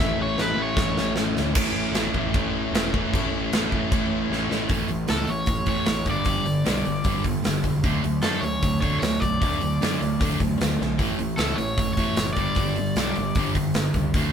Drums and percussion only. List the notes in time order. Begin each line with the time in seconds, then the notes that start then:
0.38 snare
0.77 kick, snare
0.97 snare
1.16 snare
1.37 snare
1.55 kick, crash
1.94 snare, crash
2.14 kick
2.34 kick, crash
2.75 snare, crash
2.94 kick
3.14 kick, crash
3.53 snare, crash
3.72 kick
3.92 kick, crash
4.33 snare
4.51 snare
4.69 kick, open hi-hat
4.88 open hi-hat
5.08 snare, open hi-hat
5.27 open hi-hat
5.46 kick, open hi-hat
5.66 kick, open hi-hat
5.86 snare, open hi-hat
6.05 kick, open hi-hat
6.25 kick, open hi-hat
6.46 open hi-hat
6.66 snare, open hi-hat
6.85 open hi-hat
7.04 kick, open hi-hat
7.24 kick, open hi-hat
7.44 snare, open hi-hat
7.64 kick, open hi-hat
7.84 kick, open hi-hat
8.04 open hi-hat
8.22 snare, open hi-hat
8.43 open hi-hat
8.63 kick, open hi-hat
8.82 kick, open hi-hat
9.02 snare, open hi-hat
9.22 kick, open hi-hat
9.42 kick, open hi-hat
9.61 open hi-hat
9.82 snare, open hi-hat
10.03 open hi-hat
10.21 kick, open hi-hat
10.40 kick, open hi-hat
10.61 snare, open hi-hat
10.81 snare
10.99 kick, open hi-hat
11.19 open hi-hat
11.38 snare, open hi-hat
11.58 open hi-hat
11.78 kick, open hi-hat
11.97 kick, open hi-hat
12.17 snare, open hi-hat
12.36 kick, open hi-hat
12.55 kick, open hi-hat
12.76 open hi-hat
12.96 snare, open hi-hat
13.16 open hi-hat
13.35 kick, open hi-hat
13.55 kick, open hi-hat
13.74 snare, open hi-hat
13.94 kick, open hi-hat
14.14 kick, open hi-hat